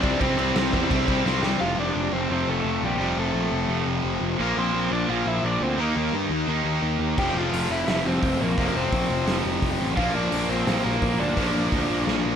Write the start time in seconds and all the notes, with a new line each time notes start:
Already playing: C2
0.03 C3 G3 C4 D4 D5, kick, crash
0.20 C2 C3 G3 C4 C5, kick, crash
0.37 C2 C3 G3 C4, crash
0.55 C2 C3 G3 C4, snare, crash
0.73 E2 C3 G3 C4, kick, crash
0.91 C2 C3 G3 C4, kick, crash
1.08 C2 C3 G3 C4, kick, crash
1.26 C2 C3 G3 C4, snare
1.43 C3 G3 C4, snare
1.60 F1 F2 C3 F3 F4 F5
1.78 F1 D4 D5
1.95 F1
2.13 F1 C4 C5
2.30 F1 F2 C3 F3 C4 C5
2.48 F1 A3 A4
2.64 F1
2.82 A#1 G3 G4
2.98 F1 F2 C3 F3
3.18 F1 A3 A4
3.34 A#1
3.52 F1
3.67 F1 F2 C3 F3
3.86 F1
4.04 F1
4.21 F1
4.37 A#1 A#2 F3 A#3
4.41 A#3 A#4
4.57 A#1 C4 C5
4.74 A#1
4.91 A#1 D4 D5
5.07 A#1 A#2 F3 A#3 F4 F5
5.26 A#1 E4 E5
5.43 A#1 D4 D5
5.61 D2 C4 C5
5.77 D#2 D#3 A#3 D#4 A#4
5.96 D#2
6.12 G2
6.30 D#2
6.47 D#2 D#3 A#3 D#4
6.65 D#2
6.83 D#2
6.99 D#2
7.17 F1 F2 C3 F3 G4 G5, kick, crash
7.35 F1 F4 F5
7.52 F1, open hi-hat
7.69 F1 E4 E5
7.87 F1 F2 C3 F3 E4 E5, snare, open hi-hat
8.05 F1 C4 C5
8.23 F1, kick, open hi-hat
8.41 A#1 A#3 A#4
8.57 F1 F2 C3 F3, kick, open hi-hat
8.68 A#4
8.75 F1 C4 C5
8.92 A#1, kick, open hi-hat
9.10 F1
9.27 F1 F2 C3 F3, snare, open hi-hat
9.45 F1
9.62 F1, kick, open hi-hat
9.80 A1
9.96 A#1 A#2 F3 A#3 F4 F5, kick, open hi-hat
10.15 A#1 D4 D5
10.32 A#1, open hi-hat
10.49 A#1 C4 C5
10.67 A#1 A#2 F3 A#3, snare, open hi-hat
10.85 A#1 A#3 A#4
11.02 A#1, kick, open hi-hat
11.19 D2 D4 D5
11.37 A#1 A#2 F3 A#3, kick, open hi-hat
11.55 A#1
11.72 D2, kick, open hi-hat
11.90 A#1
12.06 A#1 A#2 F3, snare
12.10 A#3
12.25 A#1